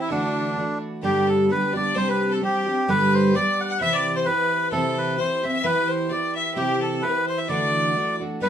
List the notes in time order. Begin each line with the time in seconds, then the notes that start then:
Already playing: C4 E4 G4
0.00 E4
0.09 D3 E3 A3 D4 F#4
0.56 E3 A3 D4 F#4
1.02 G2 D3 G3 B3 D4 G4
1.27 A4
1.49 G3 B3 D4 G4 B4
1.73 G3 B3 D4 G4 D5
1.95 C3 G3 C4 D4 G4 C5
2.08 B4
2.31 A4
2.41 G3 C4 D4 G4
2.66 C4 D4 G4
2.88 G2 D3 G3 B3 D4 G4 B4
3.14 C5
3.34 G3 B3 D4 G4 D5
3.60 F#5
3.65 F#5
3.70 F#5
3.80 C3 E3 C4 E4 G4 E5
3.93 D5
4.15 C5
4.25 E3 C4 E4 G4 B4
4.71 C3 E3 C4 E4 G4 A4
4.98 B4
5.17 E3 C4 E4 G4 C5
5.43 C4 E4 G4 E5
5.49 E5
5.64 E3 B3 E4 G4 B4
5.88 C5
6.09 E3 B3 E4 G4 D5
6.35 E5
6.55 C3 E3 C4 E4 G4
6.81 A4
7.02 E3 C4 E4 G4 B4
7.26 C5
7.38 E5
7.48 D3 E3 A3 D4 F#4 D5
7.95 E3 A3 D4 F#4
8.19 A3 D4 F#4
8.40 G3 B3 D4 A4 B4